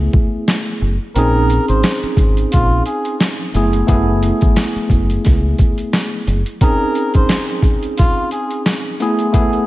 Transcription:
0.00 0.94 A3 medium
0.00 0.95 B3 medium
0.00 0.95 E4 medium
0.00 0.96 G#4 loud
0.13 kick loud
0.48 snare loud
0.81 0.96 F#1 medium
1.15 1.57 A#1 loud
1.15 3.55 C4 loud
1.15 3.55 C#4 medium
1.15 3.55 D#4 medium
1.15 3.55 G#4 loud
1.15 1.65 A#4 loud
1.15 closed hi-hat loud
1.50 closed hi-hat medium
1.68 1.81 G#1 medium
1.68 1.99 C5 medium
1.68 closed hi-hat medium
1.83 snare loud
1.83 closed hi-hat loud
2.03 muted fingered electric bass stroke soft
2.03 closed hi-hat soft
2.17 2.44 G#1 medium
2.17 kick medium
2.17 closed hi-hat medium
2.37 closed hi-hat medium
2.52 2.80 A#1 medium
2.52 2.83 F4 loud
2.52 kick loud
2.52 closed hi-hat loud
2.86 3.17 G#4 medium
2.86 closed hi-hat medium
3.05 closed hi-hat medium
3.20 snare loud
3.20 closed hi-hat medium
3.54 3.81 F#1 loud
3.54 3.86 A3 medium
3.54 3.86 B3 medium
3.54 3.87 E4 medium
3.54 3.87 G#4 loud
3.54 closed hi-hat medium
3.73 closed hi-hat medium
3.87 4.30 F#1 loud
3.87 6.40 A3 medium
3.87 6.40 B3 medium
3.87 6.41 E4 medium
3.87 6.41 G#4 loud
3.87 kick loud
3.87 closed hi-hat loud
4.23 closed hi-hat medium
4.41 4.54 G#1 medium
4.41 kick medium
4.41 closed hi-hat medium
4.56 snare loud
4.56 closed hi-hat loud
4.76 muted fingered electric bass stroke soft
4.76 closed hi-hat soft
4.89 5.17 F#1 medium
4.89 kick medium
4.89 closed hi-hat medium
5.10 closed hi-hat medium
5.25 5.53 C#2 loud
5.25 kick loud
5.25 snare soft
5.25 closed hi-hat loud
5.58 kick loud
5.58 closed hi-hat medium
5.78 closed hi-hat medium
5.93 snare loud
5.93 closed hi-hat medium
6.27 6.42 F#1 medium
6.27 closed hi-hat medium
6.46 closed hi-hat medium
6.61 9.00 C4 medium
6.61 9.00 C#4 medium
6.61 9.01 D#4 medium
6.61 9.01 G#4 loud
6.61 7.11 A#4 loud
6.61 kick loud
6.61 closed hi-hat loud
6.95 closed hi-hat medium
7.14 7.45 C5 medium
7.14 kick medium
7.14 closed hi-hat medium
7.29 snare loud
7.29 closed hi-hat loud
7.49 closed hi-hat soft
7.62 kick medium
7.62 closed hi-hat medium
7.83 closed hi-hat medium
7.97 8.29 F4 loud
7.97 kick loud
7.97 closed hi-hat loud
8.31 8.62 G#4 medium
8.31 closed hi-hat medium
8.50 closed hi-hat medium
8.66 snare loud
8.66 closed hi-hat medium
9.00 9.31 A3 medium
9.00 9.32 B3 medium
9.00 9.32 E4 medium
9.00 9.33 G#4 loud
9.00 closed hi-hat medium
9.19 closed hi-hat medium
9.33 9.67 A3 loud
9.33 9.67 B3 medium
9.33 9.67 E4 medium
9.33 9.67 G#4 loud
9.33 kick loud
9.33 closed hi-hat loud
9.53 closed hi-hat soft

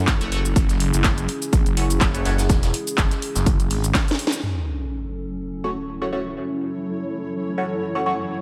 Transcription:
0.00 0.19 F#2 loud
0.00 4.39 C#4 medium
0.00 4.39 E4 medium
0.00 0.55 A4 medium
0.07 kick loud
0.07 snare loud
0.07 clap loud
0.07 closed hi-hat medium
0.07 shaker medium
0.21 0.54 F#1 medium
0.21 0.26 A3 medium
0.21 0.26 C#4 medium
0.21 0.26 F#4 medium
0.21 0.26 C#5 medium
0.21 closed hi-hat soft
0.21 closed hi-hat medium
0.21 shaker soft
0.32 0.38 A3 medium
0.32 0.38 C#4 medium
0.32 0.38 F#4 medium
0.32 0.38 C#5 loud
0.32 closed hi-hat medium
0.32 open hi-hat medium
0.45 shaker medium
0.56 0.91 F#1 loud
0.56 4.42 G#4 medium
0.56 kick loud
0.56 closed hi-hat medium
0.56 shaker medium
0.69 snare soft
0.69 closed hi-hat medium
0.69 shaker soft
0.80 closed hi-hat medium
0.80 open hi-hat loud
0.94 1.27 F#1 loud
0.94 shaker medium
1.04 kick loud
1.04 snare loud
1.04 clap loud
1.04 closed hi-hat loud
1.04 closed hi-hat medium
1.04 shaker medium
1.18 closed hi-hat medium
1.18 shaker soft
1.28 closed hi-hat medium
1.28 open hi-hat medium
1.42 closed hi-hat soft
1.42 shaker medium
1.53 1.64 A1 loud
1.53 kick loud
1.53 closed hi-hat medium
1.53 shaker medium
1.66 1.99 F#1 loud
1.66 closed hi-hat medium
1.66 shaker soft
1.77 1.84 A3 medium
1.77 1.84 C#4 medium
1.77 1.84 F#4 medium
1.77 1.84 C#5 medium
1.77 closed hi-hat medium
1.77 open hi-hat medium
1.90 closed hi-hat soft
1.90 shaker medium
2.01 2.24 F#1 loud
2.01 kick loud
2.01 snare loud
2.01 clap loud
2.01 closed hi-hat medium
2.01 shaker medium
2.14 2.20 A3 medium
2.14 2.20 C#4 medium
2.14 2.20 F#4 medium
2.14 2.20 C#5 loud
2.14 closed hi-hat medium
2.14 shaker soft
2.25 2.48 F#1 loud
2.25 2.32 A3 medium
2.25 2.32 C#4 medium
2.25 2.32 F#4 medium
2.25 2.32 C#5 loud
2.25 snare loud
2.25 closed hi-hat medium
2.25 open hi-hat medium
2.38 snare medium
2.38 closed hi-hat medium
2.38 shaker medium
2.49 2.72 E1 loud
2.49 kick loud
2.49 snare loud
2.49 closed hi-hat medium
2.49 shaker medium
2.63 snare loud
2.63 closed hi-hat medium
2.63 shaker soft
2.74 closed hi-hat medium
2.74 open hi-hat loud
2.87 closed hi-hat soft
2.87 shaker medium
2.97 3.09 F#1 medium
2.97 kick loud
2.97 snare loud
2.97 clap loud
2.97 closed hi-hat medium
2.97 shaker medium
3.11 snare medium
3.11 closed hi-hat medium
3.11 shaker soft
3.22 closed hi-hat medium
3.22 open hi-hat medium
3.35 3.69 F#1 loud
3.35 snare medium
3.35 closed hi-hat soft
3.35 shaker medium
3.46 kick loud
3.46 closed hi-hat medium
3.46 shaker medium
3.60 closed hi-hat medium
3.60 shaker soft
3.70 3.93 G#1 loud
3.70 open hi-hat medium
3.70 open hi-hat loud
3.84 closed hi-hat soft
3.84 shaker medium
3.94 kick loud
3.94 snare loud
3.94 snare medium
3.94 clap loud
3.94 closed hi-hat medium
3.94 shaker medium
4.08 snare medium
4.08 closed hi-hat medium
4.08 closed hi-hat soft
4.08 shaker soft
4.19 closed hi-hat medium
4.19 open hi-hat medium
4.27 snare medium
4.32 shaker medium
4.43 8.41 F#3 medium
4.43 8.26 C#4 medium
4.43 8.41 A4 medium
4.43 sub drop medium
4.79 8.41 E4 medium
4.96 8.41 A4 medium
5.53 8.41 C#5 medium
5.64 5.71 A3 medium
5.64 5.71 C#4 medium
5.64 5.71 F#4 medium
5.64 5.71 C#5 medium
6.02 6.07 A3 medium
6.02 6.07 C#4 medium
6.02 6.07 F#4 medium
6.02 6.07 C#5 medium
6.12 6.19 A3 medium
6.12 6.19 C#4 medium
6.12 6.19 F#4 medium
6.12 6.19 C#5 medium
7.58 7.64 A3 medium
7.58 7.64 C#4 medium
7.58 7.64 F#4 medium
7.58 7.64 C#5 medium
7.95 8.01 A3 medium
7.95 8.01 C#4 medium
7.95 8.01 F#4 medium
7.95 8.01 C#5 medium
8.06 8.13 A3 medium
8.06 8.13 C#4 medium
8.06 8.13 F#4 medium
8.06 8.13 C#5 loud
8.30 8.41 B3 medium

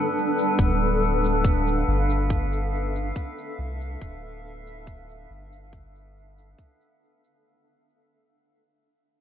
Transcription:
0.00 0.59 G3 medium
0.00 7.46 B3 medium
0.00 7.44 D4 medium
0.00 7.44 A4 medium
0.00 2.97 B4 medium
0.00 7.45 B4 medium
0.39 cabasa soft
0.59 1.83 D1 medium
0.59 kick loud
0.59 cabasa soft
0.85 7.44 F5 medium
1.24 cabasa soft
1.45 kick loud
1.45 cabasa soft
1.65 7.44 E5 medium
1.65 cabasa soft
1.88 3.12 G1 medium
2.10 cabasa soft
2.30 kick loud
2.30 cabasa soft
2.53 cabasa soft
2.96 cabasa soft
3.16 kick medium
3.16 cabasa soft
3.38 cabasa soft
3.58 3.96 C2 medium
3.81 cabasa soft
4.01 5.26 D1 medium
4.01 kick medium
4.01 cabasa soft
4.67 cabasa soft
4.87 kick medium
4.87 cabasa soft
5.10 cabasa soft
5.30 6.55 G1 medium
5.53 cabasa soft
5.73 kick medium
5.73 cabasa soft
5.96 cabasa soft
6.38 cabasa soft
6.58 kick medium
6.58 cabasa soft
6.81 cabasa soft
7.24 cabasa soft

